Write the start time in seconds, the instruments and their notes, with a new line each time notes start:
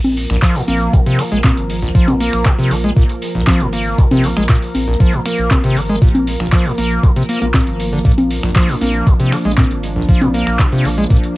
Already playing: analog synth bass A#1, ambient pad F3 A#3 A#4
0.04 closed hi-hat, high conga
0.17 open hi-hat, shaker
0.30 acid bass A#1, analog synth bass A#1, finger snap, shaker
0.42 acid bass F3, kick, clap, closed hi-hat, shaker
0.55 acid bass A#2, open hi-hat
0.68 analog synth bass A#1, acid bass A#3, open hi-hat, high conga, shaker
0.81 closed hi-hat, shaker
0.93 analog synth bass A#1, acid bass A#2, kick, closed hi-hat, shaker
1.06 acid bass C3, closed hi-hat
1.19 acid bass D#3, finger snap, open hi-hat, shaker
1.32 analog synth bass A#1, acid bass G#3, closed hi-hat, shaker
1.44 acid bass A#2, kick, clap, closed hi-hat, high conga, shaker
1.57 analog synth bass G#1, closed hi-hat
1.70 open hi-hat, shaker
1.82 acid bass A#1, shaker
1.95 analog synth bass A#1, acid bass F3, kick, closed hi-hat, shaker
2.08 acid bass A#2, closed hi-hat, high conga
2.20 acid bass A#3, open hi-hat, shaker
2.33 analog synth bass A#1, finger snap, shaker
2.46 acid bass A#2, kick, clap, closed hi-hat, shaker
2.59 acid bass C3, closed hi-hat
2.71 analog synth bass A#1, acid bass D#3, open hi-hat, shaker
2.84 acid bass G#3, closed hi-hat, shaker
2.97 analog synth bass A#1, acid bass A#2, kick, closed hi-hat, shaker
3.10 closed hi-hat
3.22 open hi-hat, shaker
3.35 analog synth bass A#1, acid bass A#1, closed hi-hat, shaker
3.47 acid bass F3, kick, clap, closed hi-hat, high conga, shaker
3.60 analog synth bass G#1, acid bass A#2, closed hi-hat
3.73 acid bass A#3, open hi-hat, shaker
3.86 shaker
3.98 analog synth bass A#1, acid bass A#2, kick, closed hi-hat, shaker
4.11 acid bass C3, closed hi-hat, high conga
4.24 acid bass D#3, open hi-hat, shaker
4.37 analog synth bass A#1, acid bass G#3, finger snap, shaker
4.49 acid bass A#2, kick, clap, closed hi-hat, shaker
4.62 open hi-hat
4.75 analog synth bass A#1, open hi-hat, high conga, shaker
4.88 acid bass A#1, closed hi-hat, shaker
5.00 analog synth bass A#1, acid bass F3, kick, closed hi-hat, shaker
5.13 acid bass A#2, closed hi-hat
5.26 acid bass A#3, finger snap, open hi-hat, shaker
5.38 analog synth bass A#1, closed hi-hat, shaker
5.51 acid bass A#2, kick, clap, closed hi-hat, high conga, shaker
5.64 analog synth bass G#1, acid bass C3, closed hi-hat
5.76 acid bass D#3, open hi-hat, shaker
5.89 acid bass G#3, shaker
6.02 analog synth bass A#1, acid bass A#2, kick, closed hi-hat, shaker
6.15 closed hi-hat, high conga
6.27 open hi-hat, shaker
6.40 acid bass A#1, analog synth bass A#1, finger snap, shaker
6.52 acid bass F3, kick, clap, closed hi-hat, shaker
6.65 acid bass A#2, open hi-hat
6.78 analog synth bass A#1, acid bass A#3, open hi-hat, shaker
6.91 closed hi-hat, shaker
7.03 analog synth bass A#1, acid bass A#2, kick, closed hi-hat, shaker
7.16 acid bass C3, closed hi-hat
7.29 acid bass A#3, open hi-hat, shaker
7.42 analog synth bass A#1, acid bass A#3, closed hi-hat, shaker
7.54 acid bass A#2, kick, clap, closed hi-hat, high conga, shaker
7.67 analog synth bass G#1, closed hi-hat
7.80 open hi-hat, shaker
7.93 acid bass D3, shaker
8.05 analog synth bass A#1, acid bass A#2, ambient pad D4, kick, closed hi-hat, shaker
8.18 closed hi-hat, high conga
8.31 open hi-hat, shaker
8.43 acid bass A#1, analog synth bass A#1, finger snap, shaker
8.56 acid bass F3, kick, clap, closed hi-hat, shaker
8.69 acid bass A#2, open hi-hat
8.81 analog synth bass A#1, acid bass A#3, open hi-hat, high conga, shaker
8.94 closed hi-hat, shaker
9.07 analog synth bass A#1, acid bass A#2, kick, closed hi-hat, shaker
9.20 acid bass C3, closed hi-hat
9.32 acid bass D#3, finger snap, open hi-hat, shaker
9.45 analog synth bass A#1, acid bass G#3, closed hi-hat, shaker
9.58 acid bass A#2, kick, clap, closed hi-hat, high conga, shaker
9.71 analog synth bass G#1, closed hi-hat
9.83 open hi-hat, shaker
9.96 acid bass A#1, shaker
10.09 analog synth bass A#1, acid bass F3, kick, closed hi-hat, shaker
10.21 acid bass A#2, closed hi-hat, high conga
10.34 acid bass A#3, open hi-hat, shaker
10.47 analog synth bass A#1, finger snap, shaker
10.59 acid bass A#2, kick, clap, closed hi-hat, shaker
10.72 acid bass C3, closed hi-hat
10.85 analog synth bass A#1, acid bass D#3, open hi-hat, shaker
10.98 acid bass G#3, closed hi-hat, shaker
11.10 analog synth bass A#1, acid bass A#2, kick, closed hi-hat, shaker
11.23 closed hi-hat